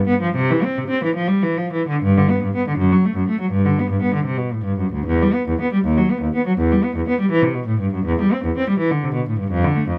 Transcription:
0.07 0.20 B3 medium
0.21 0.33 F3 medium
0.35 0.47 C3 medium
0.51 0.62 E3 medium
0.64 0.76 C4 medium
0.78 0.90 C3 medium
0.90 1.02 C4 medium
1.04 1.16 E3 medium
1.16 1.29 F3 medium
1.28 1.42 G3 medium
1.43 1.57 E3 medium
1.58 1.72 F3 medium
1.73 1.87 E3 medium
1.88 2.01 D3 medium
2.03 2.15 G2 medium
2.17 2.29 D3 medium
2.29 2.41 B3 medium
2.43 2.54 G2 medium
2.55 2.66 B3 medium
2.68 2.79 D3 medium
2.78 2.90 F#2 medium
2.92 3.04 F#3 soft
3.05 3.17 A3 medium
3.16 3.28 F#2 medium
3.29 3.41 A3 medium
3.41 3.53 F#3 medium
3.51 3.64 G2 medium
3.65 3.78 D3 medium
3.79 3.91 B3 medium
3.91 4.03 G2 medium
4.02 4.15 B3 medium
4.15 4.27 D3 medium
4.25 4.39 C3 medium
4.38 4.52 B2 medium
4.52 4.66 A2 medium
4.64 4.78 G2 medium
4.79 4.93 F#2 medium
4.93 5.06 D2 medium
5.06 5.19 E2 medium
5.22 5.34 G3 medium
5.34 5.46 B3 medium
5.48 5.59 E2 medium
5.61 5.71 B3 medium
5.73 5.83 G3 medium
5.84 5.95 D#2 medium
5.97 6.08 F#3 medium
6.11 6.21 B3 medium
6.21 6.32 D#2 medium
6.35 6.45 B3 medium
6.47 6.57 F#3 medium
6.58 6.69 E2 medium
6.72 6.82 G3 medium
6.84 6.94 B3 medium
6.96 7.06 E2 medium
7.09 7.18 B3 medium
7.20 7.30 G3 medium
7.31 7.41 E3 medium
7.42 7.54 C3 medium
7.54 7.66 B2 medium
7.67 7.79 A2 medium
7.80 7.92 G2 medium
7.94 8.05 F#2 medium
8.05 8.18 E2 medium
8.21 8.32 G3 medium
8.33 8.44 C4 medium
8.44 8.55 E2 medium
8.57 8.67 C4 medium
8.69 8.79 G3 medium
8.79 8.90 E3 medium
8.91 9.02 D3 medium
9.04 9.14 C3 medium
9.14 9.25 B2 medium
9.28 9.38 A2 medium
9.39 9.50 G2 medium
9.51 9.62 F2 medium
9.64 9.75 D3 medium
9.76 9.87 A3 medium
9.88 9.98 F2 medium

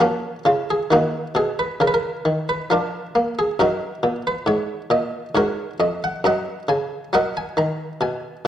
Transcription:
0.00 0.36 F3 medium
0.00 0.43 A#3 medium
0.00 0.43 C#4 medium
0.00 0.39 F#4 medium
0.45 0.82 C#3 medium
0.45 0.69 F4 loud
0.70 0.92 G#4 medium
0.90 1.27 D#3 medium
0.90 1.34 A#3 medium
0.90 1.34 D#4 medium
0.90 1.36 F#4 loud
1.35 1.71 B2 medium
1.35 1.58 G#4 medium
1.59 1.81 B4 medium
1.80 2.16 C#3 medium
1.80 1.88 A#4 loud
1.87 1.94 B4 medium
1.94 2.47 A#4 loud
2.25 2.61 D#3 medium
2.49 2.70 B4 medium
2.70 3.06 F3 medium
2.70 3.34 D4 medium
2.70 3.34 F4 medium
2.70 3.27 A#4 loud
3.15 3.50 A#3 medium
3.39 3.60 G#4 medium
3.59 3.94 F#2 medium
3.59 4.22 D#4 medium
3.59 4.22 F#4 medium
3.59 4.15 A#4 loud
4.03 4.38 A#2 medium
4.27 4.48 B4 medium
4.47 4.82 G#2 medium
4.47 4.91 C#5 loud
4.91 5.26 A#2 medium
4.91 5.29 D#5 loud
5.35 5.71 G#2 medium
5.35 5.77 F#4 medium
5.35 5.77 A#4 medium
5.35 5.73 C#5 loud
5.80 6.15 F2 medium
5.80 6.02 D#5 medium
6.04 6.25 F#5 loud
6.24 6.60 F#2 medium
6.24 6.67 D#5 medium
6.24 6.66 F#5 medium
6.24 6.62 A#5 loud
6.69 7.04 C#3 medium
6.69 7.13 G#5 loud
7.13 7.48 F#3 medium
7.13 7.34 A#4 medium
7.13 7.34 D#5 medium
7.13 7.35 F#5 loud
7.37 7.58 G#5 loud
7.57 7.92 D#3 medium
7.57 8.02 A#5 loud
8.01 8.36 B2 medium
8.01 8.45 G#5 loud

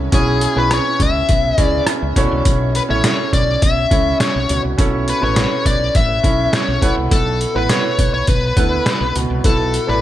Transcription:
0.00 0.12 C#4 medium
0.00 0.12 E4 medium
0.00 0.13 G#4 medium
0.00 1.59 E5 medium
0.12 0.45 B1 medium
0.12 0.96 B2 medium
0.12 0.39 C#4 medium
0.12 0.39 E4 medium
0.12 0.39 G#4 medium
0.12 0.58 G#4 medium
0.12 0.39 C#5 medium
0.12 kick loud
0.12 closed hi-hat medium
0.41 closed hi-hat medium
0.56 0.78 B1 medium
0.56 1.18 C#4 medium
0.56 1.18 E4 medium
0.56 1.18 G#4 medium
0.56 1.18 B4 medium
0.56 0.73 B4 medium
0.71 1.02 C#5 medium
0.71 cross-stick loud
0.71 closed hi-hat medium
1.00 1.22 C#2 medium
1.00 1.61 E5 medium
1.00 kick medium
1.00 closed hi-hat medium
1.29 1.51 B1 medium
1.29 kick loud
1.29 closed hi-hat medium
1.58 1.80 C#2 medium
1.58 2.11 C#4 medium
1.58 2.11 E4 medium
1.58 2.11 G#4 medium
1.58 1.84 D5 medium
1.58 2.11 E5 medium
1.58 kick medium
1.58 closed hi-hat medium
1.87 cross-stick medium
1.87 closed hi-hat medium
2.02 2.13 C#2 medium
2.16 2.27 B1 medium
2.16 3.00 B2 medium
2.16 2.75 C#4 medium
2.16 2.75 E4 medium
2.16 2.75 A4 medium
2.16 2.75 C#5 medium
2.16 kick medium
2.16 closed hi-hat medium
2.32 2.42 C2 medium
2.45 2.78 B1 medium
2.45 kick loud
2.45 closed hi-hat medium
2.75 2.81 B4 medium
2.75 closed hi-hat medium
2.89 3.01 A1 medium
2.89 3.51 C#4 medium
2.89 3.51 E4 medium
2.89 3.51 A4 medium
2.89 3.31 C#5 medium
2.89 3.51 E5 medium
3.04 snare loud
3.04 closed hi-hat medium
3.33 3.55 B1 medium
3.33 3.60 D5 medium
3.33 kick medium
3.33 closed hi-hat medium
3.62 3.84 B1 medium
3.62 4.17 E5 loud
3.62 kick loud
3.62 closed hi-hat medium
3.91 4.13 C#2 medium
3.91 4.44 C#4 medium
3.91 4.44 E4 medium
3.91 4.44 A4 medium
3.91 4.44 C#5 medium
3.91 kick medium
3.91 closed hi-hat medium
4.20 4.61 C#5 medium
4.20 snare loud
4.20 closed hi-hat medium
4.35 4.46 B1 medium
4.49 4.61 C#2 medium
4.49 5.33 B2 medium
4.49 closed hi-hat medium
4.64 4.75 C2 medium
4.78 5.11 B1 loud
4.78 5.05 C#4 medium
4.78 5.05 E4 medium
4.78 5.05 A4 medium
4.78 5.05 C#5 medium
4.78 kick loud
4.78 closed hi-hat medium
5.08 5.24 B4 medium
5.08 closed hi-hat medium
5.21 5.44 A1 medium
5.21 5.83 C#4 medium
5.21 5.84 E4 medium
5.21 5.84 A4 medium
5.21 5.84 B4 medium
5.21 5.66 C#5 medium
5.36 snare loud
5.36 closed hi-hat medium
5.66 5.88 B1 medium
5.66 5.96 D5 medium
5.66 kick medium
5.66 closed hi-hat medium
5.95 6.17 A1 medium
5.95 6.56 E5 loud
5.95 kick medium
5.95 closed hi-hat medium
6.23 6.46 B1 medium
6.23 6.77 C#4 medium
6.23 6.77 E4 medium
6.23 6.77 A4 medium
6.23 6.77 C#5 medium
6.23 kick medium
6.23 closed hi-hat medium
6.53 6.95 C#5 medium
6.53 snare loud
6.53 closed hi-hat medium
6.68 6.79 B1 medium
6.81 6.93 B1 medium
6.81 7.66 B2 medium
6.81 7.40 B3 medium
6.81 7.41 E4 medium
6.81 7.41 A4 medium
6.81 7.41 B4 medium
6.81 kick medium
6.81 closed hi-hat medium
6.97 7.08 C2 medium
7.11 7.44 B1 loud
7.11 7.57 A4 medium
7.11 kick loud
7.11 closed hi-hat medium
7.41 closed hi-hat medium
7.55 7.66 A1 medium
7.55 8.17 B3 medium
7.55 8.17 E4 medium
7.55 8.17 A4 medium
7.55 8.17 B4 medium
7.55 7.70 B4 medium
7.69 8.11 C#5 medium
7.69 snare loud
7.69 closed hi-hat medium
7.99 8.21 B1 medium
7.99 kick medium
7.99 closed hi-hat medium
8.14 8.28 C#5 medium
8.27 8.50 B1 medium
8.27 9.16 B4 medium
8.27 kick loud
8.27 closed hi-hat medium
8.56 8.79 D2 medium
8.56 9.10 B3 medium
8.56 9.10 E4 medium
8.56 9.10 A4 medium
8.56 9.10 B4 medium
8.56 kick medium
8.56 closed hi-hat medium
8.86 snare loud
8.86 closed hi-hat medium
9.01 9.12 B1 medium
9.15 9.26 C#2 medium
9.15 9.99 B2 medium
9.15 closed hi-hat medium
9.30 9.41 C2 medium
9.44 9.77 B1 loud
9.44 9.71 B3 medium
9.44 9.71 E4 medium
9.44 9.71 A4 medium
9.44 9.90 A4 medium
9.44 9.71 B4 medium
9.44 kick loud
9.44 closed hi-hat medium
9.74 closed hi-hat medium
9.87 10.01 A1 medium
9.87 10.01 B3 medium
9.87 10.01 E4 medium
9.87 10.01 A4 medium
9.87 10.01 B4 medium
9.87 10.01 D5 medium

